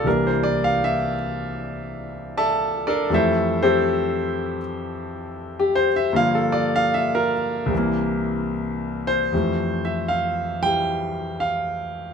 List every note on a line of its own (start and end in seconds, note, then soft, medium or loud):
0.04 3.10 C2 soft
0.04 3.10 C3 soft
0.04 3.09 E3 soft
0.04 3.09 G3 soft
0.04 0.32 A#4 medium
0.09 3.12 A#3 soft
0.09 2.86 D4 medium
0.27 0.55 C5 medium
0.43 0.62 D5 medium
0.64 0.79 F5 medium
0.84 1.15 E5 medium
2.38 2.87 A4 medium
2.38 2.85 D5 medium
2.38 2.87 E5 medium
2.38 2.87 A5 medium
2.87 3.10 D4 medium
2.87 3.10 A4 medium
2.87 3.10 A#4 medium
2.87 3.10 D5 medium
3.10 6.14 F2 medium
3.10 6.14 E3 soft
3.10 6.15 G3 medium
3.10 6.15 A3 medium
3.14 3.63 E4 medium
3.14 3.62 A4 medium
3.14 3.61 C5 medium
3.14 3.63 E5 medium
3.63 4.58 C4 medium
3.63 4.58 G4 medium
3.63 4.58 A4 medium
3.63 4.58 C5 medium
5.60 5.87 G4 medium
5.76 5.94 C5 medium
5.96 6.11 E5 medium
6.13 7.71 G2 medium
6.13 7.71 D3 medium
6.13 7.72 F3 soft
6.13 7.72 A#3 medium
6.13 6.41 F5 loud
6.35 6.64 A4 medium
6.52 6.72 D5 medium
6.76 6.90 F5 loud
6.94 7.20 E5 medium
7.15 7.33 A#4 medium
7.66 9.30 C2 medium
7.66 9.32 C3 medium
7.73 9.31 E3 medium
7.73 9.36 A#3 medium
9.07 9.82 C5 medium
9.32 12.14 F2 soft
9.32 10.61 E3 soft
9.32 10.64 G3 soft
9.32 12.14 A3 medium
9.85 10.09 E5 medium
10.08 10.66 F5 medium
10.62 12.14 E3 soft
10.62 12.14 G3 soft
10.62 11.38 G5 loud
11.40 12.14 F5 medium